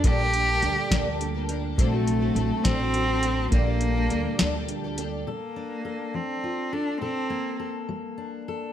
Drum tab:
HH |xxxxxx|xxxxxx|xxxxxx|------|
SD |---o--|---o--|---o--|------|
BD |o--o--|o--o--|o-----|------|

HH |------|
SD |------|
BD |------|